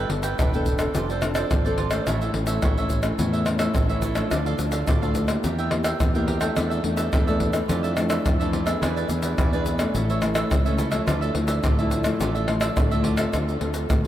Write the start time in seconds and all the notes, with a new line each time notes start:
Already playing: G3
0.00 A4 B4 G5
0.09 G1 B3 D4 A4, muted cavaquinho stroke, pandeiro
0.23 A4 B4 G5, pandeiro, shaker
0.39 E1 D3 D4 A4 B4 G5, pandeiro, tamborim, shaker, surdo
0.54 B3 D4 A4 B4 G5, pandeiro, shaker
0.66 pandeiro, shaker, surdo
0.79 C4 D4 A4, pandeiro, tamborim, shaker
0.95 F1 F3 F4 A4 C5 D5, pandeiro, shaker, surdo
1.10 A4 C5 D5, pandeiro, shaker
1.22 C4 D4 A4, muted cavaquinho stroke, pandeiro, tamborim, shaker
1.35 A4 C5 D5, pandeiro, tamborim, shaker
1.51 G#1 F3, pandeiro, tamborim, shaker, surdo
1.65 C4 D4 A4 C5 D5, pandeiro, shaker
1.78 F4 A4 C5 D5, pandeiro
1.91 E3 A3 C#4 A4 C5 D5, pandeiro, tamborim, shaker
2.07 A1 A2 E4 A4 C#5 E5, pandeiro, tamborim, shaker, surdo
2.21 A4 C#5 E5, pandeiro, shaker
2.34 A1 E3 A3 C#4, muted cavaquinho stroke, pandeiro
2.47 A4 C#5 E5, pandeiro, shaker
2.62 A1 E3 E4 A4 C#5 E5, pandeiro, tamborim, shaker, surdo
2.78 E3 A3 C#4 A4 C#5 E5, pandeiro, shaker
2.90 pandeiro, shaker, surdo
3.03 E3 A3 C#4, pandeiro, tamborim, shaker
3.19 E2 A2 E4 A4 C#5 E5, pandeiro, shaker, surdo
3.33 A4 C#5 E5, pandeiro, shaker
3.46 E3 A3 C#4, muted cavaquinho stroke, pandeiro, tamborim, shaker
3.59 A4 C#5 E5, pandeiro, tamborim, shaker
3.75 A1 E3, pandeiro, tamborim, shaker, surdo
3.89 E3 A3 C#4 A4 C#5 E5, pandeiro, shaker
4.02 E4 A4 C#5 E5, pandeiro, shaker
4.15 F3 A3 D4 A4 C#5 E5, pandeiro, tamborim, shaker
4.31 D2 D3 D4 A4 D5 F5, pandeiro, tamborim, shaker, surdo
4.46 A4 D5 F5, pandeiro, shaker
4.59 D2 F3 A3 D4, muted cavaquinho stroke, pandeiro, shaker
4.71 A4 D5 F5, pandeiro, shaker
4.87 D2 A2 D4 A4 D5 F5, pandeiro, tamborim, shaker, surdo
5.02 F3 A3 D4 A4 D5 F5, pandeiro, shaker
5.15 pandeiro, shaker
5.28 A#3 E4 G4, pandeiro, tamborim, shaker
5.44 E2 E3 G4 A#4 E5 G5, pandeiro, shaker, surdo
5.58 A#4 E5 G5, pandeiro, shaker
5.71 A#3 E4 G4, muted cavaquinho stroke, pandeiro, tamborim
5.83 A#4 E5 G5, pandeiro, tamborim, shaker
6.00 E2 E3, pandeiro, tamborim, shaker, surdo
6.15 A#3 E4 G4 A#4 E5 G5, pandeiro, shaker
6.27 G4 A#4 E5 G5, pandeiro
6.41 A3 D4 A4 A#4 E5 G5, pandeiro, tamborim, shaker
6.56 E2 E3 D4 A4 D5 E5, pandeiro, tamborim, shaker, surdo
6.70 A4 D5 E5, pandeiro, shaker
6.83 E2 A3 D4 A4, muted cavaquinho stroke, pandeiro
6.96 A4 D5 E5, pandeiro, shaker
7.13 E2 E3 D4 A4 D5 E5, pandeiro, tamborim, shaker, surdo
7.27 A3 D4 A4 D5 E5, pandeiro, shaker
7.40 pandeiro, surdo
7.53 E3 A3 D4, pandeiro, tamborim, shaker
7.68 F2 F4 A4 D5 E5, pandeiro, shaker, surdo
7.83 A4 D5 E5, pandeiro, shaker
7.97 E3 A3 D4, muted cavaquinho stroke, pandeiro, tamborim, shaker
8.09 A4 D5 E5, pandeiro, tamborim, shaker
8.25 F2, pandeiro, tamborim, shaker, surdo
8.40 E3 A3 D4 A4 D5 E5, pandeiro, shaker
8.53 F4 A4 D5 E5, pandeiro
8.66 B3 D4 G#4 A4 D5 E5, pandeiro, tamborim, shaker
8.81 E2 E3 E4 G#4 B4 D5, pandeiro, tamborim, shaker, surdo
8.96 G#4 B4 D5, pandeiro, shaker
9.08 E2 B3 D4 G#4, muted cavaquinho stroke, pandeiro, shaker
9.22 G#4 B4 D5, pandeiro, shaker
9.38 E2 B2 E4 G#4 B4 D5, pandeiro, tamborim, shaker, surdo
9.53 B3 D4 G#4 B4 D5, pandeiro, shaker
9.66 pandeiro, shaker
9.79 E3 A3 C#4, pandeiro, tamborim, shaker
9.94 A1 A2 E4 A4 C#5 E5, pandeiro, shaker, surdo
10.10 A4 C#5 E5, pandeiro, shaker
10.22 E3 A3 C#4, muted cavaquinho stroke, pandeiro, tamborim, shaker
10.35 A4 C#5 E5, pandeiro, tamborim, shaker
10.51 C#2 E3, pandeiro, tamborim, shaker, surdo
10.65 E3 A3 C#4 A4 C#5 E5, pandeiro, shaker
10.78 E4 A4 C#5 E5, pandeiro, shaker
10.91 F3 A3 E4 A4 C#5 E5, pandeiro, tamborim, shaker
11.06 D2 D3 F4 A4 D5 E5, pandeiro, tamborim, shaker, surdo
11.21 A4 D5 E5, pandeiro, shaker
11.34 D2 F3 A3 E4, muted cavaquinho stroke, pandeiro
11.47 A4 D5 E5, pandeiro, shaker
11.63 D2 A2 F4 A4 D5 E5, pandeiro, tamborim, shaker, surdo
11.78 F3 A3 E4 A4 D5 E5, pandeiro, shaker
11.91 pandeiro, shaker
12.04 F3 A3 E4, pandeiro, tamborim, shaker
12.20 A1 D3 F4 A4 D5 E5, pandeiro, shaker, surdo
12.35 A4 D5 E5, pandeiro, shaker
12.48 F3 A3 E4, muted cavaquinho stroke, pandeiro, tamborim
12.61 A4 D5 E5, pandeiro, tamborim, shaker
12.77 D2 A2, pandeiro, tamborim, shaker, surdo
12.91 F3 A3 E4 A4 D5 E5, pandeiro, shaker
13.03 F4 A4 D5 E5, pandeiro
13.17 C4 F4 A4 D5 E5, pandeiro, tamborim, shaker
13.33 D2 D3, pandeiro, tamborim, shaker, surdo
13.49 pandeiro, shaker
13.61 D2 C4 F4 A4, pandeiro
13.74 pandeiro, shaker
13.90 D2 A2, pandeiro, tamborim, shaker, surdo